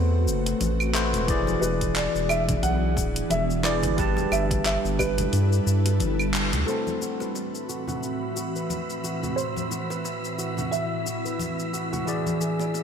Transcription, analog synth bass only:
0.00 0.29 E2 loud
0.27 0.54 F#1 medium
0.61 1.15 A1 medium
1.14 1.57 E1 medium
1.62 2.08 E1 loud
2.15 2.58 E1 medium
2.63 2.98 B1 loud
2.97 3.24 D1 medium
3.30 3.85 E1 medium
3.83 4.26 G1 medium
4.32 4.78 G1 loud
4.85 5.28 G1 medium
5.33 5.60 G2 loud
5.67 6.02 G2 medium
6.00 6.55 G1 medium
6.53 6.65 D2 loud

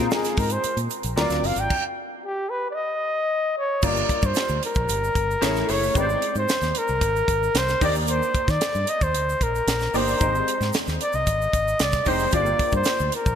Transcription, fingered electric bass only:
0.38 0.57 G#2 medium
0.64 muted fingered electric bass stroke soft
0.77 0.87 A#2 medium
1.04 1.14 A#1 medium
1.17 1.27 D2 medium
1.30 1.40 D2 medium
1.43 1.53 F#1 loud
1.56 1.66 G#1 medium
3.83 4.02 G1 loud
4.23 4.32 G2 loud
4.49 4.59 D2 medium
4.76 4.85 A#1 medium
4.89 5.08 G1 medium
5.15 5.35 G1 medium
5.42 5.62 A1 loud
5.69 5.88 F#1 medium
5.95 6.15 G#1 loud
6.35 6.45 G#2 loud
6.62 6.71 D#2 medium
6.89 6.99 C2 medium
7.01 7.21 G#1 loud
7.28 7.48 G#1 medium
7.54 7.74 C2 medium
7.81 8.20 D#2 medium
8.48 8.58 D#3 loud
8.75 8.84 G2 medium
9.01 9.14 D#2 medium
9.14 9.34 D2 loud
9.40 9.60 A#1 medium
9.67 9.87 A#1 loud
9.94 10.13 G1 medium
10.21 10.40 G#1 loud
10.61 10.70 G#2 loud
10.88 10.97 D#2 medium
11.14 11.23 C2 medium
11.27 11.46 G#1 loud
11.53 11.72 G#1 medium
11.80 11.99 C2 medium
12.06 12.26 F1 medium
12.33 12.53 G1 loud
12.72 12.82 G2 loud
13.00 13.10 D2 medium
13.26 13.35 A#1 medium

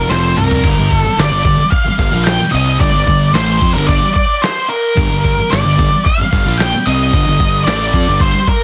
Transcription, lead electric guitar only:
0.00 0.33 A#4 medium
0.10 0.38 C5 medium
0.37 0.94 A#4 medium
0.94 1.20 A4 medium
1.20 1.70 D5 loud
1.71 2.22 F5 loud
2.24 2.50 G5 medium
2.52 2.80 D#5 medium
2.80 3.36 D5 loud
3.34 3.73 C5 loud
3.74 3.87 A#4 medium
3.87 4.13 D5 loud
4.14 4.40 D5 loud
4.42 4.69 C5 medium
4.69 5.53 A#4 loud
5.51 6.01 D5 loud
6.05 6.60 F5 loud
6.58 6.86 G5 loud
6.86 7.64 D#5 loud
7.64 8.21 D5 medium
8.21 8.49 C5 loud
8.49 8.64 A#4 medium

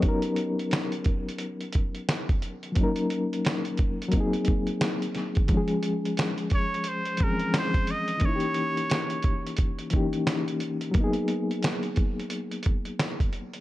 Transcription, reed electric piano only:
0.00 2.69 F#3 medium
0.00 2.70 B3 medium
0.00 2.72 C#4 medium
0.00 0.24 G4 medium
0.00 0.23 C#5 medium
0.05 2.73 D#4 medium
0.05 2.75 A#4 medium
2.72 2.82 F3 medium
2.72 4.09 A#3 medium
2.77 4.07 F#3 medium
2.77 4.10 C#4 medium
2.77 4.12 D#4 medium
2.83 4.14 A#4 medium
4.08 5.44 F#3 medium
4.08 5.46 A#3 medium
4.14 5.47 C4 medium
4.14 5.49 D#4 medium
4.20 5.50 G#4 medium
5.45 5.55 D#3 medium
5.45 7.15 G#3 medium
5.51 7.17 F3 medium
5.51 7.19 C#4 medium
5.57 7.20 G#4 medium
7.18 7.27 E3 soft
7.18 8.22 G#3 soft
7.18 8.22 C4 soft
7.23 8.24 F3 medium
7.23 8.22 C#4 soft
7.23 8.24 G#4 medium
8.17 9.86 E3 medium
8.17 9.88 A#3 medium
8.23 9.89 C#4 soft
8.23 9.91 D#4 soft
8.29 8.34 E4 medium
8.36 9.95 G4 medium
9.91 10.94 E3 medium
9.91 10.93 A#3 medium
9.91 10.95 C#4 medium
9.95 10.96 D#4 medium
9.95 10.96 G4 medium
10.91 13.61 F#3 medium
10.91 13.61 A#3 medium
10.97 13.61 B3 medium
10.97 13.61 D#4 medium
11.04 13.61 G#4 medium

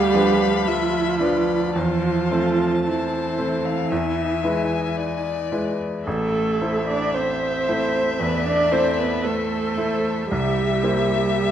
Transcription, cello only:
0.00 0.68 G3 medium
0.66 1.75 F3 medium
1.75 2.87 F3 medium
2.85 5.52 E3 soft
6.07 6.92 A3 medium
6.90 7.18 D4 medium
7.17 8.22 C4 medium
8.21 8.47 B3 medium
8.46 8.74 D4 medium
8.73 9.00 C4 medium
8.98 9.27 B3 medium
9.25 10.31 A3 medium
10.32 11.51 G3 medium

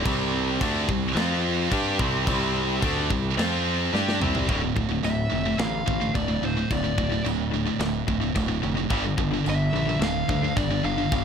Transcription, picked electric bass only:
0.05 0.57 C2 loud
0.61 0.86 D2 loud
0.89 1.14 C2 medium
1.16 1.67 F2 medium
1.72 1.97 G2 loud
1.99 2.25 C2 medium
2.28 2.79 C2 loud
2.82 3.08 D2 medium
3.10 3.36 C2 medium
3.38 3.89 F2 medium
3.94 4.19 G2 loud
4.21 4.46 C2 medium
4.49 4.71 D1 medium
4.76 4.98 D1 medium
5.03 5.25 D1 medium
5.32 5.54 F1 medium
5.60 5.82 A1 medium
5.88 6.09 A1 medium
6.15 6.37 D1 medium
6.41 6.64 D1 medium
6.71 6.93 D1 medium
6.99 7.20 D1 medium
7.24 7.69 D1 medium
7.80 8.02 D1 medium
8.08 8.30 D1 medium
8.36 8.58 D1 medium
8.63 8.86 F1 medium
8.91 9.13 G1 loud
9.18 9.40 G1 medium
9.47 9.69 G1 medium
9.73 9.95 A#1 medium
9.99 10.22 D1 medium
10.30 10.52 D2 medium
10.57 10.79 G1 medium
10.84 11.06 G1 medium
11.13 11.24 G1 medium

